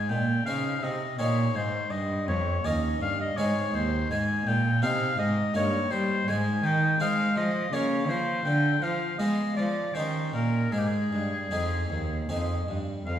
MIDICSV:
0, 0, Header, 1, 4, 480
1, 0, Start_track
1, 0, Tempo, 729040
1, 1258, Time_signature, 3, 2, 24, 8
1, 6058, Tempo, 773196
1, 8536, End_track
2, 0, Start_track
2, 0, Title_t, "Oboe"
2, 0, Program_c, 0, 68
2, 54, Note_on_c, 0, 79, 86
2, 295, Note_off_c, 0, 79, 0
2, 299, Note_on_c, 0, 77, 89
2, 547, Note_on_c, 0, 75, 93
2, 557, Note_off_c, 0, 77, 0
2, 774, Note_off_c, 0, 75, 0
2, 778, Note_on_c, 0, 73, 95
2, 1025, Note_on_c, 0, 72, 89
2, 1035, Note_off_c, 0, 73, 0
2, 1254, Note_on_c, 0, 75, 93
2, 1263, Note_off_c, 0, 72, 0
2, 1496, Note_off_c, 0, 75, 0
2, 1499, Note_on_c, 0, 73, 94
2, 1746, Note_on_c, 0, 75, 94
2, 1756, Note_off_c, 0, 73, 0
2, 1980, Note_off_c, 0, 75, 0
2, 1984, Note_on_c, 0, 77, 104
2, 2100, Note_off_c, 0, 77, 0
2, 2110, Note_on_c, 0, 75, 92
2, 2219, Note_on_c, 0, 73, 94
2, 2229, Note_off_c, 0, 75, 0
2, 2466, Note_on_c, 0, 72, 100
2, 2476, Note_off_c, 0, 73, 0
2, 2699, Note_off_c, 0, 72, 0
2, 2703, Note_on_c, 0, 80, 106
2, 2943, Note_on_c, 0, 79, 108
2, 2953, Note_off_c, 0, 80, 0
2, 3173, Note_off_c, 0, 79, 0
2, 3177, Note_on_c, 0, 77, 108
2, 3410, Note_off_c, 0, 77, 0
2, 3414, Note_on_c, 0, 75, 106
2, 3649, Note_off_c, 0, 75, 0
2, 3659, Note_on_c, 0, 73, 104
2, 3891, Note_on_c, 0, 72, 108
2, 3901, Note_off_c, 0, 73, 0
2, 4140, Note_on_c, 0, 80, 115
2, 4150, Note_off_c, 0, 72, 0
2, 4372, Note_on_c, 0, 79, 106
2, 4382, Note_off_c, 0, 80, 0
2, 4611, Note_off_c, 0, 79, 0
2, 4616, Note_on_c, 0, 77, 104
2, 4847, Note_off_c, 0, 77, 0
2, 4852, Note_on_c, 0, 75, 108
2, 5090, Note_on_c, 0, 73, 100
2, 5100, Note_off_c, 0, 75, 0
2, 5328, Note_on_c, 0, 72, 92
2, 5338, Note_off_c, 0, 73, 0
2, 5557, Note_off_c, 0, 72, 0
2, 5561, Note_on_c, 0, 79, 106
2, 5810, Note_on_c, 0, 77, 89
2, 5820, Note_off_c, 0, 79, 0
2, 6041, Note_off_c, 0, 77, 0
2, 6045, Note_on_c, 0, 75, 96
2, 6279, Note_off_c, 0, 75, 0
2, 6283, Note_on_c, 0, 74, 92
2, 6518, Note_on_c, 0, 72, 88
2, 6528, Note_off_c, 0, 74, 0
2, 6759, Note_off_c, 0, 72, 0
2, 6763, Note_on_c, 0, 70, 80
2, 7000, Note_on_c, 0, 68, 78
2, 7009, Note_off_c, 0, 70, 0
2, 7043, Note_on_c, 0, 67, 63
2, 7052, Note_off_c, 0, 68, 0
2, 7094, Note_on_c, 0, 68, 85
2, 7103, Note_off_c, 0, 67, 0
2, 7975, Note_off_c, 0, 68, 0
2, 8452, Note_on_c, 0, 77, 69
2, 8536, Note_off_c, 0, 77, 0
2, 8536, End_track
3, 0, Start_track
3, 0, Title_t, "Harpsichord"
3, 0, Program_c, 1, 6
3, 62, Note_on_c, 1, 46, 54
3, 280, Note_off_c, 1, 46, 0
3, 306, Note_on_c, 1, 60, 46
3, 308, Note_on_c, 1, 49, 55
3, 310, Note_on_c, 1, 63, 45
3, 311, Note_on_c, 1, 68, 48
3, 523, Note_off_c, 1, 49, 0
3, 546, Note_on_c, 1, 48, 60
3, 650, Note_off_c, 1, 60, 0
3, 652, Note_off_c, 1, 63, 0
3, 653, Note_off_c, 1, 68, 0
3, 759, Note_off_c, 1, 48, 0
3, 781, Note_on_c, 1, 60, 46
3, 782, Note_on_c, 1, 46, 57
3, 786, Note_on_c, 1, 63, 47
3, 787, Note_on_c, 1, 68, 51
3, 995, Note_off_c, 1, 46, 0
3, 1019, Note_on_c, 1, 44, 58
3, 1124, Note_off_c, 1, 60, 0
3, 1127, Note_off_c, 1, 63, 0
3, 1127, Note_off_c, 1, 68, 0
3, 1234, Note_off_c, 1, 44, 0
3, 1254, Note_on_c, 1, 43, 60
3, 1472, Note_off_c, 1, 43, 0
3, 1503, Note_on_c, 1, 41, 60
3, 1718, Note_off_c, 1, 41, 0
3, 1741, Note_on_c, 1, 61, 51
3, 1742, Note_on_c, 1, 39, 58
3, 1746, Note_on_c, 1, 63, 52
3, 1748, Note_on_c, 1, 70, 54
3, 1957, Note_off_c, 1, 39, 0
3, 1985, Note_on_c, 1, 43, 63
3, 2087, Note_off_c, 1, 61, 0
3, 2090, Note_off_c, 1, 63, 0
3, 2091, Note_off_c, 1, 70, 0
3, 2200, Note_off_c, 1, 43, 0
3, 2223, Note_on_c, 1, 60, 49
3, 2224, Note_on_c, 1, 44, 62
3, 2225, Note_on_c, 1, 56, 65
3, 2228, Note_on_c, 1, 63, 48
3, 2231, Note_on_c, 1, 68, 49
3, 2440, Note_off_c, 1, 44, 0
3, 2464, Note_on_c, 1, 39, 59
3, 2675, Note_off_c, 1, 60, 0
3, 2678, Note_off_c, 1, 39, 0
3, 2678, Note_off_c, 1, 63, 0
3, 2679, Note_off_c, 1, 68, 0
3, 2688, Note_off_c, 1, 56, 0
3, 2706, Note_on_c, 1, 44, 65
3, 2707, Note_on_c, 1, 56, 70
3, 2917, Note_off_c, 1, 44, 0
3, 2934, Note_off_c, 1, 56, 0
3, 2942, Note_on_c, 1, 46, 64
3, 3155, Note_off_c, 1, 46, 0
3, 3175, Note_on_c, 1, 48, 66
3, 3175, Note_on_c, 1, 60, 54
3, 3179, Note_on_c, 1, 63, 54
3, 3182, Note_on_c, 1, 68, 57
3, 3391, Note_off_c, 1, 48, 0
3, 3410, Note_on_c, 1, 44, 66
3, 3520, Note_off_c, 1, 60, 0
3, 3522, Note_off_c, 1, 63, 0
3, 3524, Note_off_c, 1, 68, 0
3, 3627, Note_off_c, 1, 44, 0
3, 3648, Note_on_c, 1, 58, 54
3, 3650, Note_on_c, 1, 43, 65
3, 3653, Note_on_c, 1, 63, 55
3, 3655, Note_on_c, 1, 70, 51
3, 3867, Note_off_c, 1, 43, 0
3, 3890, Note_on_c, 1, 55, 64
3, 4103, Note_off_c, 1, 58, 0
3, 4105, Note_off_c, 1, 63, 0
3, 4106, Note_off_c, 1, 70, 0
3, 4107, Note_off_c, 1, 55, 0
3, 4135, Note_on_c, 1, 56, 76
3, 4137, Note_on_c, 1, 44, 67
3, 4351, Note_off_c, 1, 44, 0
3, 4369, Note_on_c, 1, 51, 64
3, 4586, Note_off_c, 1, 51, 0
3, 4598, Note_off_c, 1, 56, 0
3, 4608, Note_on_c, 1, 56, 64
3, 4608, Note_on_c, 1, 60, 51
3, 4611, Note_on_c, 1, 63, 52
3, 4614, Note_on_c, 1, 68, 57
3, 4781, Note_off_c, 1, 60, 0
3, 4783, Note_off_c, 1, 63, 0
3, 4824, Note_off_c, 1, 56, 0
3, 4845, Note_on_c, 1, 53, 63
3, 4957, Note_off_c, 1, 68, 0
3, 5062, Note_off_c, 1, 53, 0
3, 5088, Note_on_c, 1, 58, 49
3, 5089, Note_on_c, 1, 49, 66
3, 5091, Note_on_c, 1, 65, 51
3, 5097, Note_on_c, 1, 70, 51
3, 5305, Note_off_c, 1, 49, 0
3, 5327, Note_on_c, 1, 53, 64
3, 5543, Note_off_c, 1, 58, 0
3, 5544, Note_off_c, 1, 53, 0
3, 5545, Note_off_c, 1, 65, 0
3, 5547, Note_off_c, 1, 70, 0
3, 5565, Note_on_c, 1, 50, 66
3, 5785, Note_off_c, 1, 50, 0
3, 5808, Note_on_c, 1, 53, 60
3, 6029, Note_off_c, 1, 53, 0
3, 6053, Note_on_c, 1, 56, 58
3, 6054, Note_on_c, 1, 59, 51
3, 6054, Note_on_c, 1, 65, 47
3, 6059, Note_on_c, 1, 68, 52
3, 6265, Note_off_c, 1, 56, 0
3, 6286, Note_on_c, 1, 53, 58
3, 6394, Note_off_c, 1, 59, 0
3, 6394, Note_off_c, 1, 65, 0
3, 6397, Note_off_c, 1, 68, 0
3, 6501, Note_off_c, 1, 53, 0
3, 6522, Note_on_c, 1, 51, 55
3, 6523, Note_on_c, 1, 61, 45
3, 6527, Note_on_c, 1, 63, 44
3, 6529, Note_on_c, 1, 67, 45
3, 6738, Note_off_c, 1, 51, 0
3, 6762, Note_on_c, 1, 46, 53
3, 6979, Note_off_c, 1, 61, 0
3, 6980, Note_off_c, 1, 46, 0
3, 6981, Note_off_c, 1, 63, 0
3, 6982, Note_off_c, 1, 67, 0
3, 7002, Note_on_c, 1, 56, 60
3, 7004, Note_on_c, 1, 44, 53
3, 7225, Note_off_c, 1, 44, 0
3, 7241, Note_off_c, 1, 56, 0
3, 7254, Note_on_c, 1, 43, 54
3, 7471, Note_off_c, 1, 43, 0
3, 7491, Note_on_c, 1, 60, 40
3, 7493, Note_on_c, 1, 41, 52
3, 7494, Note_on_c, 1, 63, 42
3, 7499, Note_on_c, 1, 68, 49
3, 7711, Note_off_c, 1, 41, 0
3, 7734, Note_on_c, 1, 39, 53
3, 7840, Note_off_c, 1, 60, 0
3, 7842, Note_off_c, 1, 63, 0
3, 7845, Note_off_c, 1, 68, 0
3, 7952, Note_off_c, 1, 39, 0
3, 7976, Note_on_c, 1, 41, 49
3, 7976, Note_on_c, 1, 60, 42
3, 7977, Note_on_c, 1, 63, 40
3, 7981, Note_on_c, 1, 68, 46
3, 8150, Note_off_c, 1, 60, 0
3, 8151, Note_off_c, 1, 63, 0
3, 8194, Note_off_c, 1, 41, 0
3, 8220, Note_on_c, 1, 43, 51
3, 8325, Note_off_c, 1, 68, 0
3, 8434, Note_off_c, 1, 43, 0
3, 8459, Note_on_c, 1, 41, 43
3, 8536, Note_off_c, 1, 41, 0
3, 8536, End_track
4, 0, Start_track
4, 0, Title_t, "Cello"
4, 0, Program_c, 2, 42
4, 0, Note_on_c, 2, 44, 69
4, 61, Note_on_c, 2, 46, 65
4, 70, Note_off_c, 2, 44, 0
4, 299, Note_off_c, 2, 46, 0
4, 303, Note_on_c, 2, 49, 66
4, 539, Note_off_c, 2, 49, 0
4, 546, Note_on_c, 2, 48, 62
4, 778, Note_off_c, 2, 48, 0
4, 781, Note_on_c, 2, 46, 70
4, 1014, Note_off_c, 2, 46, 0
4, 1017, Note_on_c, 2, 44, 70
4, 1252, Note_off_c, 2, 44, 0
4, 1256, Note_on_c, 2, 43, 77
4, 1499, Note_on_c, 2, 41, 69
4, 1508, Note_off_c, 2, 43, 0
4, 1733, Note_off_c, 2, 41, 0
4, 1737, Note_on_c, 2, 39, 70
4, 1973, Note_off_c, 2, 39, 0
4, 1977, Note_on_c, 2, 43, 66
4, 2212, Note_off_c, 2, 43, 0
4, 2216, Note_on_c, 2, 44, 71
4, 2455, Note_off_c, 2, 44, 0
4, 2460, Note_on_c, 2, 39, 74
4, 2695, Note_off_c, 2, 39, 0
4, 2699, Note_on_c, 2, 44, 82
4, 2932, Note_off_c, 2, 44, 0
4, 2935, Note_on_c, 2, 46, 78
4, 3176, Note_on_c, 2, 48, 77
4, 3186, Note_off_c, 2, 46, 0
4, 3407, Note_off_c, 2, 48, 0
4, 3411, Note_on_c, 2, 44, 76
4, 3648, Note_off_c, 2, 44, 0
4, 3650, Note_on_c, 2, 43, 80
4, 3886, Note_off_c, 2, 43, 0
4, 3889, Note_on_c, 2, 55, 77
4, 4126, Note_off_c, 2, 55, 0
4, 4130, Note_on_c, 2, 44, 87
4, 4363, Note_off_c, 2, 44, 0
4, 4367, Note_on_c, 2, 51, 81
4, 4604, Note_off_c, 2, 51, 0
4, 4608, Note_on_c, 2, 56, 82
4, 4846, Note_on_c, 2, 53, 75
4, 4856, Note_off_c, 2, 56, 0
4, 5080, Note_off_c, 2, 53, 0
4, 5084, Note_on_c, 2, 49, 80
4, 5325, Note_on_c, 2, 53, 73
4, 5335, Note_off_c, 2, 49, 0
4, 5561, Note_off_c, 2, 53, 0
4, 5565, Note_on_c, 2, 50, 84
4, 5804, Note_off_c, 2, 50, 0
4, 5808, Note_on_c, 2, 53, 73
4, 6049, Note_off_c, 2, 53, 0
4, 6053, Note_on_c, 2, 56, 72
4, 6282, Note_off_c, 2, 56, 0
4, 6286, Note_on_c, 2, 53, 66
4, 6520, Note_off_c, 2, 53, 0
4, 6523, Note_on_c, 2, 51, 70
4, 6758, Note_off_c, 2, 51, 0
4, 6761, Note_on_c, 2, 46, 65
4, 6999, Note_off_c, 2, 46, 0
4, 7003, Note_on_c, 2, 44, 66
4, 7242, Note_off_c, 2, 44, 0
4, 7246, Note_on_c, 2, 43, 63
4, 7487, Note_off_c, 2, 43, 0
4, 7492, Note_on_c, 2, 41, 61
4, 7730, Note_off_c, 2, 41, 0
4, 7735, Note_on_c, 2, 39, 58
4, 7971, Note_off_c, 2, 39, 0
4, 7975, Note_on_c, 2, 41, 65
4, 8211, Note_off_c, 2, 41, 0
4, 8214, Note_on_c, 2, 43, 58
4, 8450, Note_off_c, 2, 43, 0
4, 8456, Note_on_c, 2, 41, 58
4, 8536, Note_off_c, 2, 41, 0
4, 8536, End_track
0, 0, End_of_file